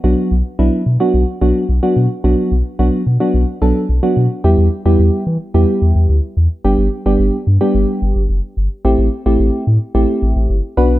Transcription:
<<
  \new Staff \with { instrumentName = "FM electric piano" } { \time 4/4 \key e \minor \tempo 4 = 109 <fis b d' fis'>8 r8 <fis b d' e'>8 r16 <fis b d' fis'>8 r16 <fis b d' fis'>8 r16 <fis b d' fis'>8 r16 | <fis b d' fis'>8 r8 <fis b d' fis'>8 r16 <fis b d' fis'>8 r16 <fis b d' a'>8 r16 <fis b d' fis'>8 r16 | <g b e' g'>8 r16 <g b e' g'>8. r8 <g b e' g'>4 r4 | <g b d' g'>8 r16 <g b d' g'>8 r8 <g b d' g'>4 r4 r16 |
<a c' e' g'>8 r16 <a c' e' g'>8. r8 <a c' e' g'>4 r8 <b d' fis' b'>8 | }
  \new Staff \with { instrumentName = "Analog synth bass" } { \clef bass \time 4/4 \key e \minor b,,16 r16 b,,16 r16 b,,16 r16 b,16 r16 b,,16 r16 b,,16 r16 b,,16 r16 b,16 r16 | b,,16 r16 b,,16 r16 b,,16 r16 b,16 r16 b,,16 r16 b,,16 r16 b,,16 r16 b,16 r16 | e,16 e,16 r16 e,16 e,16 r16 e16 r16 e,16 r16 e,16 e,16 d,16 r16 e,16 r16 | g,,16 g,,16 r16 g,,16 g,,16 r16 g,16 r16 g,,16 r16 g,,16 g,,16 fis,,16 r16 g,,16 r16 |
a,,16 a,,16 r16 a,,16 a,,16 r16 a,16 r16 a,,16 r16 a,,16 a,,16 g,,16 r16 b,,8 | }
>>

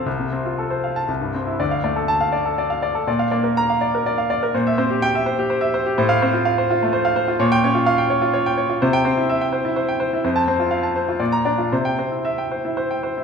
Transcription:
<<
  \new Staff \with { instrumentName = "Grand piano" } { \time 3/4 \key f \major \tempo 4 = 124 << { r4. r16 a''16 r8. e'16 | r4 a''8 r4. | r4 bes''8 r4. | r4 g''8 r4. |
r16 f''8 r2 r16 | r16 g''8 r2 r16 | r16 g''8 r2 r16 | r16 a''8 r4. bes''8 r16 |
r16 g''8 r2 r16 | } \\ { r2. | d''16 f''16 d''16 a'8 f''16 d''16 a'16 d''16 f''16 d''16 a'16 | d''16 f''16 d''16 bes'8 f''16 d''16 bes'16 d''16 f''16 d''16 bes'16 | c''16 e''16 c''16 g'8 e''16 c''16 g'16 c''16 e''16 c''16 g'16 |
c''8 c''16 f'16 f''16 c''16 f'16 a16 c''16 f''16 c''16 f'16 | des''8 des''16 f'16 f''16 g''16 des''16 f'16 des''16 g''16 des''16 f'16 | c''8 c''16 e'16 e''16 g''16 c''16 e'16 c''16 g''16 c''16 e'16 | c''8 c''16 f'16 f''16 a''16 c''16 f'16 d''8 d''16 f'16 |
c''8 c''16 e'16 e''16 g''16 c''16 e'16 c''16 g''16 c''16 e'16 | } >> }
  \new Staff \with { instrumentName = "Grand piano" } { \time 3/4 \key f \major c,16 c16 c'16 f'16 a'16 c''16 f''8 c,16 g,16 c'8 | d,8 a8 r2 | bes,8 bes8 r2 | bes,8 c'8 r2 |
a,8 c'8 r2 | bes,8 des'8 r2 | c8 c'8 r2 | f,8 c'8 r4 bes,8 d'8 |
c8 c'8 r2 | }
>>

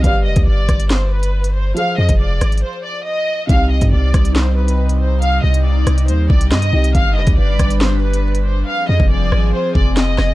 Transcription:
<<
  \new Staff \with { instrumentName = "Violin section" } { \time 4/4 \key c \minor \tempo 4 = 139 f''8 ees''8 d''4 c''8 b'4 c''8 | f''8 ees''8 d''4 c''8 d''8 ees''4 | f''8 ees''8 d''4 c''8 b'4 c''8 | f''8 ees''8 d''4 c''8 d''8 ees''4 |
f''8 ees''8 d''4 c''8 b'4 c''8 | f''8 ees''8 d''4 c''8 d''8 ees''4 | }
  \new Staff \with { instrumentName = "Grand piano" } { \time 4/4 \key c \minor <g g' b' d''>1 | <f f' aes' c''>1 | <c c' ees' g'>1~ | <c c' ees' g'>2.~ <c c' ees' g'>8 <c c' ees' g'>8 |
r1 | r1 | }
  \new Staff \with { instrumentName = "Analog synth pad" } { \time 4/4 \key c \minor r1 | r1 | <c g ees'>1~ | <c g ees'>1 |
<d' b'>1 | <f c' aes'>1 | }
  \new Staff \with { instrumentName = "808-style bass" } { \clef bass \time 4/4 \key c \minor g,,8 f,,16 d,16 g,,8 g,,2~ g,,8 | r8 f,16 f,,8. aes,,8 r2 | c,8. g,16 c,8 c,2~ c,8~ | c,8 c,4 c,8 ees,8 c,8 g,8 c,8 |
g,,8 f,,16 d,16 g,,8 g,,2~ g,,8 | r8 f,16 f,,8. aes,,8 r8 f,,4 f,,8 | }
  \new DrumStaff \with { instrumentName = "Drums" } \drummode { \time 4/4 <hh bd>8. <hh bd>16 r8 <hh bd ss>16 hh16 <hc sn>8. hh16 r16 hh8. | hh8. <hh bd>16 r8 <hh ss>16 hh32 hh32 r4 r4 | <hh bd>8. <hh bd>16 r8 <hh bd ss>16 hh16 <hc sn>8. hh16 r16 hh8. | hh8. hh16 r8 <hh ss>16 hh16 hh8 bd16 hh16 <hc sn>16 hh8 hh16 |
<hh bd>8. <hh bd>16 r8 <hh bd ss>16 hh16 <hc sn>8. hh16 r16 hh8. | r8. bd16 r8 ss8 r8 bd8 <hc sn>8 <ss sn>8 | }
>>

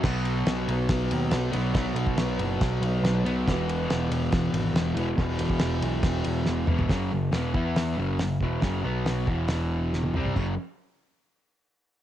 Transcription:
<<
  \new Staff \with { instrumentName = "Distorted electric guitar" } { \clef bass \time 4/4 \key e \lydian \tempo 4 = 140 <b, fis b>2.~ <b, fis b>8 <b, fis b>8 | <b, fis b>2.~ <b, fis b>8 <b, fis b>8 | <e, b, e>2.~ <e, b, e>8 <e, b, e>8 | <e, b, e>2.~ <e, b, e>8 <e, b, e>8 |
<fis, cis fis>8 <fis, cis>8 <e, b, e>8 <e b e'>4 <fis, cis fis>8 <fis, cis>8 <e, b, e>8 | <fis, cis fis>8 <b, fis b>4 <e, b, e>2 <c g c'>8 | <fis, cis fis>8 r2. r8 | }
  \new Staff \with { instrumentName = "Picked electric bass" } { \clef bass \time 4/4 \key e \lydian b,,4 b,,8 b,,8 b,,8 dis,8 b,,8 b,,8 | b,,8 b,,8 b,,8 fis,,8 b,,8 b,,8 b,,4 | e,,4 e,,8 e,,8 e,,8 gis,,8 e,,8 e,,8 | e,,8 e,,8 e,,8 b,,8 e,,8 e,,8 e,,4 |
fis,,8 fis,,8 e,,8 e,4 fis,,8 fis,,8 e,,8 | fis,,8 b,,4 e,,2 c,8 | fis,,8 r2. r8 | }
  \new DrumStaff \with { instrumentName = "Drums" } \drummode { \time 4/4 <cymc bd sn>8 cymr8 <cymr sn>8 cymr8 <bd cymr sn>8 cymr8 <cymr sn>8 cymr8 | <bd cymr sn>8 cymr16 bd16 <cymr sn>8 cymr8 <bd cymr sn>8 cymr8 <cymr sn>8 cymr8 | <bd cymr sn>8 cymr8 <cymr sn>8 cymr8 <bd cymr sn>8 cymr8 <cymr sn>8 cymr8 | <bd cymr sn>8 cymr16 bd16 <cymr sn>8 cymr8 <bd cymr sn>8 cymr8 sn8 toml16 tomfh16 |
<hho bd sn>4 <hho sn>8 bd8 <hho sn>4 <hho sn>8 bd8 | <hho bd sn>4 <hho sn>8 bd8 <hho sn>4 sn16 tommh16 toml16 tomfh16 | <cymc bd>4 r4 r4 r4 | }
>>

